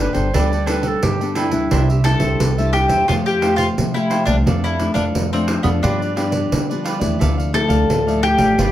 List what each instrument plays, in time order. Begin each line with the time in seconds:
Already playing: nylon-string guitar D3 B3 D4 A4, mandolin D4
0.00 flute B4
0.13 upright bass G1, nylon-string guitar B3 D4 A4, cavaquinho A4 B4 G5, flute C5, pandeiro
0.34 upright bass D2, nylon-string guitar G3 B3 D4 A4, cavaquinho D4 A4 B4 G5, flute D5, pandeiro
0.51 cavaquinho A4 B4 G5, pandeiro
0.66 nylon-string guitar B3 D4 A4, cavaquinho D4 A4 B4 G5, flute B4, pandeiro
0.82 cavaquinho A4 B4 G5, flute B4, pandeiro
0.87 flute A4
1.03 upright bass G2, nylon-string guitar D3, flute G4, pandeiro
1.21 nylon-string guitar B3 D4 A4, cavaquinho A4 B4 G5, pandeiro
1.35 cavaquinho D4 A4 B4 G5, flute E4, pandeiro
1.51 upright bass D2, nylon-string guitar G3 D4 E4, cavaquinho A4 B4 G5, pandeiro
1.71 upright bass C2, nylon-string guitar C3, cavaquinho D4 G4 C5 E5, pandeiro
1.89 cavaquinho G4 C5 E5, pandeiro
2.04 nylon-string guitar G3 D4 E4, mandolin A4, muted cavaquinho stroke, pandeiro
2.20 upright bass C2, cavaquinho G4 C5 E5, pandeiro
2.40 upright bass C2, nylon-string guitar G3, pandeiro
2.58 nylon-string guitar G3 D4 E4, cavaquinho G4 C5 E5, pandeiro
2.73 mandolin G4, muted cavaquinho stroke, pandeiro
2.88 upright bass E2, cavaquinho G4 C5 E5, pandeiro
3.08 upright bass F2, nylon-string guitar F3 A3 C4 G4, mandolin F4, cavaquinho A4 C5 F5 G5, pandeiro
3.26 mandolin G4, cavaquinho C5 F5 G5, pandeiro
3.41 nylon-string guitar A3 C4 G4, cavaquinho A4 C5 F5 G5, pandeiro
3.56 mandolin F4, cavaquinho C5 F5 G5, pandeiro
3.78 nylon-string guitar C3, upright bass F3, pandeiro
3.94 nylon-string guitar A3 C4 G4, mandolin E4, cavaquinho C5 F5 G5, pandeiro
4.10 cavaquinho A4 C5 F5 G5, pandeiro
4.26 upright bass C2, nylon-string guitar F3 A3 D4, mandolin D4, cavaquinho C5 F5 G5, pandeiro
4.46 upright bass F2, nylon-string guitar F2, cavaquinho D4 A4 D5 F5, pandeiro
4.64 mandolin E4, cavaquinho A4 D5 F5, pandeiro
4.79 nylon-string guitar F3 A3 D4, muted cavaquinho stroke, pandeiro
4.94 upright bass F2, mandolin D4, cavaquinho A4 D5 F5, pandeiro
5.15 upright bass F2, nylon-string guitar F2, pandeiro
5.33 nylon-string guitar F3 A3 D4, mandolin C4, cavaquinho A4 D5 F5, pandeiro
5.48 muted cavaquinho stroke, pandeiro
5.63 upright bass F2, nylon-string guitar F3 B3 D4, mandolin B3, cavaquinho A4 D5 F5, pandeiro
5.83 upright bass G2, mandolin D4, cavaquinho F4 G4 B4 D5, pandeiro
6.01 cavaquinho G4 B4 D5, pandeiro
6.16 nylon-string guitar F3 B3 D4, cavaquinho F4 G4 B4 D5, pandeiro
6.31 cavaquinho G4 B4 D5, pandeiro
6.52 nylon-string guitar D3, upright bass G3, pandeiro
6.69 nylon-string guitar F3 B3 D4, cavaquinho G4 B4 D5, pandeiro
6.84 cavaquinho F4 G4 B4 D5, pandeiro
7.00 upright bass E2, nylon-string guitar F3 A3 E4, cavaquinho G4 B4 D5, pandeiro
7.19 upright bass D2, nylon-string guitar D3, cavaquinho E4 A4 D5 F5, pandeiro
7.38 cavaquinho A4 D5 F5, pandeiro
7.53 nylon-string guitar F3 A3 E4, mandolin A4, muted cavaquinho stroke, pandeiro
7.69 upright bass D2, cavaquinho A4 D5 F5, pandeiro
7.89 upright bass D2, nylon-string guitar A2, pandeiro
8.07 nylon-string guitar F3 A3 E4, cavaquinho A4 D5 F5, pandeiro
8.22 mandolin G4, muted cavaquinho stroke, pandeiro
8.37 upright bass A1, cavaquinho A4 D5 F5, pandeiro
8.58 upright bass G1, nylon-string guitar G2 F3 B3 D4, cavaquinho F4 G4 B4 D5, pandeiro